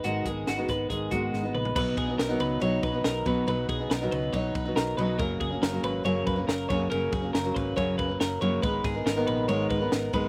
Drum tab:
CC |----------------|x---------------|----------------|----------------|
RD |----------------|--x-x-x-x-x-x-x-|x-x-x-x-x-x-x-x-|x-x-x-x-x-x-x-x-|
HH |x-x-x-x-x-x-----|----------------|----------------|----------------|
SD |----o-------o---|----o-------o---|----o-------o---|----o-------o---|
T2 |--------------o-|----------------|----------------|----------------|
FT |---------------o|----------------|----------------|----------------|
BD |--o---o-o-o-----|o-o-------o---o-|--o-----o-o-----|o-o-------o---o-|

CC |----------------|----------------|
RD |x-x-x-x-x-x-x-x-|x-x-x-x-x-x-x-x-|
HH |----------------|----------------|
SD |----o-------o---|--o-o-------o---|
T2 |----------------|----------------|
FT |----------------|----------------|
BD |--o---o-o-o-----|o-o-------o---o-|